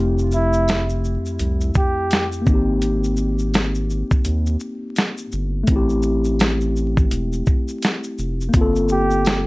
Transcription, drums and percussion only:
0.19 shaker
0.31 shaker
0.53 shaker
0.68 snare, closed hi-hat, tambourine, shaker
0.89 shaker
1.05 shaker
1.26 shaker
1.39 closed hi-hat, shaker
1.61 shaker
1.74 kick, shaker
2.10 snare, closed hi-hat, tambourine, shaker
2.32 shaker
2.47 kick, shaker
2.82 closed hi-hat, shaker
3.04 shaker
3.17 shaker
3.39 shaker
3.54 snare, closed hi-hat, tambourine, shaker
3.75 shaker
3.90 shaker
4.11 kick, shaker
4.25 closed hi-hat, shaker
4.46 shaker
4.60 shaker
4.96 snare, closed hi-hat, tambourine, shaker
5.18 shaker
5.32 shaker
5.67 kick, closed hi-hat, shaker
5.89 shaker
6.03 shaker
6.24 shaker
6.39 snare, closed hi-hat, tambourine, shaker
6.61 shaker
6.76 shaker
6.97 kick, shaker
7.11 closed hi-hat, shaker
7.33 shaker
7.46 kick, shaker
7.68 shaker
7.82 snare, closed hi-hat, tambourine, shaker
8.04 shaker
8.18 shaker
8.41 shaker
8.54 kick, closed hi-hat, shaker
8.76 shaker
8.89 shaker
9.11 shaker
9.25 snare, closed hi-hat, tambourine, shaker

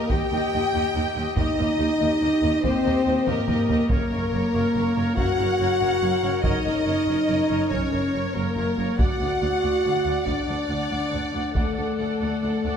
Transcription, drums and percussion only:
0.10 taiko
1.37 taiko
2.64 taiko
3.27 taiko low-mid
3.48 taiko low-mid
3.69 taiko low
3.90 taiko
5.17 taiko
6.44 taiko
7.71 taiko
8.99 taiko
10.27 taiko
11.55 taiko

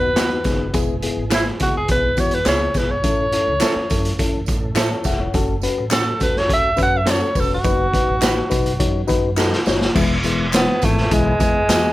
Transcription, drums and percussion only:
0.16 snare, clap, closed hi-hat, tambourine
0.44 kick, snare, closed hi-hat, tambourine
0.73 kick, closed hi-hat, tambourine
1.02 closed hi-hat
1.31 snare, clap, closed hi-hat, tambourine
1.59 kick, closed hi-hat, tambourine
1.88 kick, closed hi-hat, tambourine
2.17 kick, closed hi-hat, tambourine
2.31 closed hi-hat
2.46 snare, clap, closed hi-hat, tambourine
2.74 kick, snare, closed hi-hat, tambourine
3.04 kick, closed hi-hat, tambourine
3.32 closed hi-hat
3.61 snare, clap, closed hi-hat, tambourine
3.90 kick, closed hi-hat, tambourine
4.05 closed hi-hat
4.19 kick, closed hi-hat, tambourine
4.46 kick, closed hi-hat, tambourine
4.76 snare, clap, closed hi-hat, tambourine
5.04 kick, snare, closed hi-hat, tambourine
5.34 kick, closed hi-hat, tambourine
5.62 closed hi-hat, tambourine
5.91 snare, clap, closed hi-hat, tambourine
6.20 kick, closed hi-hat, tambourine
6.36 snare
6.50 kick, closed hi-hat
6.77 kick, closed hi-hat, tambourine
7.07 snare, clap, closed hi-hat, tambourine
7.35 kick, open hi-hat, tambourine
7.64 kick, closed hi-hat, tambourine
7.94 kick, closed hi-hat
8.22 snare, clap, closed hi-hat, tambourine
8.51 kick, closed hi-hat, tambourine
8.66 closed hi-hat
8.80 kick, closed hi-hat
9.08 kick, closed hi-hat, tambourine
9.37 snare, clap, tambourine
9.53 snare
9.66 snare, tambourine
9.81 snare
9.96 kick, crash, tambourine
10.23 closed hi-hat, tambourine
10.53 snare, clap, closed hi-hat, tambourine
10.82 kick, closed hi-hat, tambourine
10.97 snare
11.11 kick, closed hi-hat, tambourine
11.40 kick, closed hi-hat, tambourine
11.69 snare, clap, closed hi-hat, tambourine

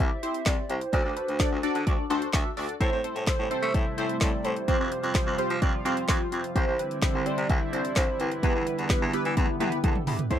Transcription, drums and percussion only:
0.23 closed hi-hat
0.34 closed hi-hat
0.46 kick, snare, clap, closed hi-hat
0.70 closed hi-hat
0.81 closed hi-hat
0.93 kick, closed hi-hat
1.17 closed hi-hat
1.28 closed hi-hat
1.40 kick, snare, clap, closed hi-hat
1.63 closed hi-hat
1.75 closed hi-hat
1.87 kick, closed hi-hat
2.11 closed hi-hat
2.22 closed hi-hat
2.33 kick, snare, clap, closed hi-hat
2.57 open hi-hat
2.69 closed hi-hat
2.81 kick, closed hi-hat
3.04 closed hi-hat
3.16 closed hi-hat
3.27 kick, snare, clap, closed hi-hat
3.51 closed hi-hat
3.63 closed hi-hat
3.74 kick, closed hi-hat
3.98 closed hi-hat
4.09 closed hi-hat
4.21 kick, snare, clap, closed hi-hat
4.45 closed hi-hat
4.56 closed hi-hat
4.68 kick, closed hi-hat
4.92 closed hi-hat
5.04 closed hi-hat
5.15 kick, snare, clap, closed hi-hat
5.39 closed hi-hat
5.50 closed hi-hat
5.62 kick, closed hi-hat
5.86 closed hi-hat
5.97 closed hi-hat
6.08 kick, snare, clap, closed hi-hat
6.32 closed hi-hat
6.44 closed hi-hat
6.56 kick, closed hi-hat
6.79 closed hi-hat
6.91 closed hi-hat
7.02 kick, snare, clap, closed hi-hat
7.26 closed hi-hat
7.38 closed hi-hat
7.49 kick, closed hi-hat
7.73 closed hi-hat
7.85 closed hi-hat
7.96 kick, snare, clap, closed hi-hat
8.20 closed hi-hat
8.31 closed hi-hat
8.43 kick, closed hi-hat
8.67 closed hi-hat
8.79 closed hi-hat
8.90 kick, snare, clap, closed hi-hat
9.13 closed hi-hat
9.25 closed hi-hat
9.37 kick, closed hi-hat, high tom
9.60 closed hi-hat, mid tom
9.72 closed hi-hat
9.84 kick, closed hi-hat, mid tom
9.95 mid tom
10.07 floor tom, open hi-hat
10.19 closed hi-hat, floor tom
10.31 kick, closed hi-hat

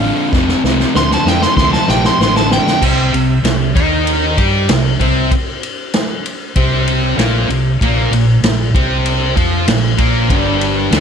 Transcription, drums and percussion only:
0.33 kick, snare
0.49 snare
0.65 snare
0.80 snare
0.95 snare
1.11 snare
1.27 snare
1.42 snare
1.57 kick, snare
1.73 snare
1.88 snare
2.04 snare
2.21 snare
2.36 snare
2.51 snare
2.67 snare
2.82 kick, crash
3.14 ride
3.45 snare, ride
3.76 kick, ride
4.07 ride
4.38 kick, ride
4.69 snare, ride
5.00 kick, ride
5.31 kick, ride
5.63 ride
5.94 snare, ride
6.26 ride
6.56 kick, ride
6.88 ride
7.19 snare, ride
7.50 ride
7.81 kick, ride
8.13 ride
8.44 snare, ride
8.75 kick, ride
9.06 ride
9.37 kick, ride
9.68 snare, ride
9.98 kick, ride
10.30 kick, ride
10.61 ride
10.92 snare, ride

